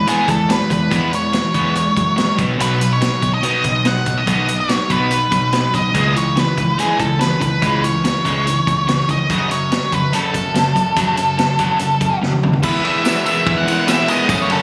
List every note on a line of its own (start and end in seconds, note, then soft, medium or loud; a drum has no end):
0.07 0.27 E3 medium
0.07 0.27 G#3 medium
0.07 0.27 B3 medium
0.07 0.30 G#4 medium
0.07 closed hi-hat medium
0.28 0.61 E2 medium
0.28 0.47 E3 medium
0.28 0.47 G#3 medium
0.28 0.49 A4 medium
0.28 kick medium
0.28 closed hi-hat medium
0.50 0.68 E3 medium
0.50 0.69 G#3 medium
0.50 0.72 B4 medium
0.50 snare loud
0.50 closed hi-hat medium
0.61 snare soft
0.70 0.87 E2 medium
0.70 0.89 E3 medium
0.70 0.90 G#3 medium
0.70 1.11 B4 medium
0.70 kick medium
0.70 closed hi-hat medium
0.91 1.41 E2 medium
0.91 1.11 E3 medium
0.91 1.11 G#3 medium
0.91 1.11 B3 loud
0.91 kick loud
0.91 closed hi-hat medium
1.13 1.31 E3 medium
1.13 1.31 G#3 medium
1.13 2.36 C#5 medium
1.13 closed hi-hat medium
1.33 1.52 E3 medium
1.33 1.52 G#3 medium
1.33 snare medium
1.33 closed hi-hat medium
1.54 1.87 E2 medium
1.54 1.74 E3 medium
1.54 1.74 G#3 medium
1.54 1.74 B3 medium
1.54 kick medium
1.54 closed hi-hat medium
1.75 1.94 E3 medium
1.75 1.95 G#3 medium
1.75 closed hi-hat medium
1.96 2.29 F#2 medium
1.96 2.15 E3 medium
1.96 2.15 G#3 medium
1.96 kick medium
1.96 closed hi-hat medium
2.16 2.36 E3 medium
2.16 2.36 G#3 medium
2.16 snare loud
2.16 closed hi-hat medium
2.38 2.55 B1 medium
2.38 2.58 B2 medium
2.38 2.58 F#3 medium
2.38 2.58 B3 loud
2.38 kick loud
2.38 closed hi-hat medium
2.59 3.09 B1 loud
2.59 2.79 B2 medium
2.59 2.79 F#3 medium
2.59 2.80 B3 loud
2.59 2.93 B4 medium
2.59 closed hi-hat medium
2.80 2.99 B2 medium
2.80 3.00 F#3 medium
2.80 closed hi-hat medium
2.93 3.31 C#5 medium
3.01 3.20 B2 medium
3.01 3.20 F#3 medium
3.01 snare loud
3.01 closed hi-hat medium
3.22 3.39 B1 medium
3.22 3.41 B2 medium
3.22 3.42 F#3 medium
3.22 kick medium
3.22 closed hi-hat medium
3.34 3.88 D#5 medium
3.43 3.63 B2 medium
3.43 3.63 F#3 medium
3.43 3.63 B3 loud
3.43 closed hi-hat medium
3.64 3.97 B1 medium
3.64 3.83 B2 medium
3.64 3.83 F#3 medium
3.64 kick medium
3.64 closed hi-hat medium
3.85 4.04 B2 medium
3.85 4.05 F#3 medium
3.85 4.19 F#5 medium
3.85 snare medium
3.85 closed hi-hat medium
3.96 snare soft
4.06 4.23 B1 medium
4.06 4.25 B2 medium
4.06 4.25 F#3 medium
4.06 kick medium
4.06 closed hi-hat medium
4.18 4.56 D#5 medium
4.27 4.77 B1 medium
4.27 4.47 B2 medium
4.27 4.47 F#3 medium
4.27 4.47 B3 loud
4.27 kick loud
4.27 closed hi-hat medium
4.48 4.67 B2 medium
4.48 4.67 F#3 medium
4.48 closed hi-hat medium
4.60 4.92 C#5 medium
4.69 4.88 B2 medium
4.69 4.88 F#3 medium
4.69 snare loud
4.69 closed hi-hat medium
4.90 5.23 B1 medium
4.90 5.10 B2 medium
4.90 5.10 F#3 medium
4.90 5.10 B3 medium
4.90 5.77 B4 medium
4.90 kick medium
4.90 closed hi-hat medium
5.11 5.30 B2 medium
5.11 5.30 F#3 medium
5.11 closed hi-hat medium
5.31 5.65 B1 medium
5.31 5.51 B2 medium
5.31 5.51 F#3 medium
5.31 kick medium
5.31 closed hi-hat medium
5.52 5.72 B2 medium
5.52 5.72 F#3 medium
5.52 snare loud
5.52 closed hi-hat medium
5.74 5.90 B1 medium
5.74 5.93 B2 medium
5.74 5.93 F#3 medium
5.74 6.17 D#5 medium
5.74 kick medium
5.74 closed hi-hat medium
5.94 6.44 C#2 loud
5.94 6.14 C#3 medium
5.94 6.15 E3 medium
5.94 6.15 G#3 medium
5.94 kick loud
5.94 closed hi-hat medium
6.15 6.35 C#3 medium
6.15 6.35 E3 medium
6.15 6.38 C#5 medium
6.15 closed hi-hat medium
6.36 6.55 C#3 medium
6.36 6.56 E3 medium
6.36 6.80 B4 medium
6.36 snare loud
6.36 closed hi-hat medium
6.57 6.74 C#2 medium
6.57 6.76 C#3 medium
6.57 6.77 E3 medium
6.57 kick medium
6.57 closed hi-hat medium
6.78 6.98 C#3 medium
6.78 6.98 E3 medium
6.78 6.99 G#3 medium
6.78 7.00 G#4 medium
6.78 closed hi-hat medium
6.99 7.32 C#2 medium
6.99 7.19 C#3 medium
6.99 7.19 E3 medium
6.99 7.20 A4 medium
6.99 kick medium
6.99 closed hi-hat medium
7.20 7.39 C#3 medium
7.20 7.39 E3 medium
7.20 7.41 B4 medium
7.20 snare medium
7.20 closed hi-hat medium
7.40 7.58 C#2 medium
7.40 7.60 C#3 medium
7.40 7.60 E3 medium
7.40 7.85 B4 medium
7.40 kick medium
7.40 closed hi-hat medium
7.62 8.11 C#2 medium
7.62 7.82 C#3 medium
7.62 7.82 E3 medium
7.62 7.82 G#3 loud
7.62 kick loud
7.62 closed hi-hat medium
7.83 8.02 C#3 medium
7.83 8.02 E3 medium
7.83 9.10 C#5 medium
7.83 closed hi-hat medium
8.04 8.23 C#3 medium
8.04 8.23 E3 medium
8.04 snare loud
8.04 closed hi-hat medium
8.25 8.58 C#2 medium
8.25 8.45 C#3 medium
8.25 8.45 E3 medium
8.25 8.45 G#3 medium
8.25 kick medium
8.25 closed hi-hat medium
8.46 8.65 C#3 medium
8.46 8.65 E3 medium
8.46 closed hi-hat medium
8.67 9.00 C#2 medium
8.67 8.86 C#3 medium
8.67 8.86 E3 medium
8.67 kick medium
8.67 closed hi-hat medium
8.87 9.06 C#3 medium
8.87 9.07 E3 medium
8.87 snare loud
8.87 closed hi-hat medium
8.99 snare soft
9.08 9.25 C#2 medium
9.08 9.28 C#3 medium
9.08 9.28 E3 medium
9.08 9.49 D#5 medium
9.08 kick medium
9.08 closed hi-hat medium
9.30 9.79 F#2 loud
9.30 9.49 F#2 medium
9.30 9.50 C#3 medium
9.30 9.50 F#3 loud
9.30 kick loud
9.30 closed hi-hat medium
9.51 9.69 F#2 medium
9.51 9.70 C#3 medium
9.51 9.94 C#5 medium
9.51 closed hi-hat medium
9.71 9.90 F#2 medium
9.71 9.91 C#3 medium
9.71 snare loud
9.71 closed hi-hat medium
9.92 10.11 F#2 medium
9.92 10.09 F#2 medium
9.92 10.12 C#3 medium
9.92 10.13 B4 medium
9.92 kick medium
9.92 closed hi-hat medium
10.13 10.32 F#2 medium
10.13 10.33 C#3 medium
10.13 10.33 F#3 medium
10.13 12.19 A4 medium
10.13 closed hi-hat medium
10.34 10.53 F#2 medium
10.34 10.67 F#2 medium
10.34 10.53 C#3 medium
10.34 kick medium
10.34 closed hi-hat medium
10.54 10.74 F#2 medium
10.54 10.74 C#3 medium
10.54 snare loud
10.54 closed hi-hat medium
10.75 10.94 F#2 medium
10.75 10.92 F#2 medium
10.75 10.94 C#3 medium
10.75 kick medium
10.75 closed hi-hat medium
10.96 11.16 F#2 medium
10.96 11.46 F#2 medium
10.96 11.16 C#3 medium
10.96 11.17 F#3 loud
10.96 kick loud
10.96 closed hi-hat medium
11.17 11.36 F#2 medium
11.17 11.36 C#3 medium
11.17 closed hi-hat medium
11.38 11.57 F#2 medium
11.38 11.57 C#3 medium
11.38 snare loud
11.38 closed hi-hat medium
11.59 11.79 F#2 medium
11.59 11.92 F#2 medium
11.59 11.79 C#3 medium
11.59 11.79 F#3 medium
11.59 kick medium
11.59 closed hi-hat medium
11.79 11.99 F#2 medium
11.79 11.99 C#3 medium
11.79 closed hi-hat medium
12.01 12.20 F#2 medium
12.01 12.33 F#2 medium
12.01 12.20 C#3 medium
12.01 kick medium
12.01 closed hi-hat medium
12.22 12.41 F#2 medium
12.22 12.41 C#3 medium
12.22 snare medium
12.33 high tom medium
12.43 12.59 D#2 medium
12.43 12.62 F#2 medium
12.43 12.62 C#3 medium
12.43 mid tom medium
12.53 floor tom medium
12.63 12.80 E2 loud
12.63 12.82 E3 medium
12.63 14.29 E3 medium
12.63 12.83 G#3 medium
12.63 12.83 B3 loud
12.63 14.29 B3 medium
12.63 12.84 E4 loud
12.63 14.29 G#4 medium
12.63 12.85 B4 medium
12.63 14.29 E5 medium
12.63 14.26 E6 medium
12.63 kick loud
12.63 crash loud
12.63 tambourine medium
12.83 13.02 E3 medium
12.83 13.02 G#3 medium
12.83 13.03 B3 medium
12.83 13.03 E4 medium
12.83 13.25 E5 medium
12.83 ride medium
13.03 13.24 E3 medium
13.03 13.25 G#3 loud
13.03 13.25 B3 loud
13.03 13.25 E4 medium
13.03 snare loud
13.03 ride medium
13.03 tambourine medium
13.26 13.45 E3 medium
13.26 13.46 G#3 medium
13.26 13.46 B3 medium
13.26 13.46 E4 loud
13.26 13.58 E5 loud
13.26 ride medium
13.26 tambourine medium
13.46 13.63 E2 medium
13.46 13.66 E3 medium
13.46 13.66 G#3 loud
13.46 13.67 B3 loud
13.46 13.67 E4 loud
13.46 kick loud
13.46 ride loud
13.58 13.89 F#5 loud
13.67 13.86 E3 medium
13.67 13.87 G#3 medium
13.67 13.87 B3 medium
13.67 13.87 E4 medium
13.67 ride medium
13.67 tambourine medium
13.87 14.08 E3 loud
13.87 14.08 G#3 loud
13.87 14.09 B3 loud
13.87 14.09 E4 loud
13.87 14.09 E5 loud
13.87 snare loud
13.87 ride loud
13.87 tambourine loud
14.08 14.28 E3 medium
14.08 14.28 G#3 loud
14.08 14.29 B3 loud
14.08 14.29 E4 loud
14.08 14.38 D#5 loud
14.08 ride medium
14.08 tambourine medium
14.29 14.62 F#2 loud
14.29 14.49 F#2 loud
14.29 14.50 C#3 loud
14.29 14.62 F#3 medium
14.29 14.50 F#3 loud
14.29 14.50 A3 loud
14.29 14.62 C#4 medium
14.29 14.51 C#4 loud
14.29 14.62 A4 medium
14.29 14.62 F#5 medium
14.29 14.62 D#6 medium
14.29 kick loud
14.29 ride loud
14.29 tambourine medium
14.42 14.52 C#5 medium
14.50 14.62 F#2 medium
14.50 14.62 C#3 medium
14.50 14.62 F#3 medium
14.50 14.62 A3 medium
14.50 14.62 C#4 medium
14.50 14.62 A4 medium
14.50 ride medium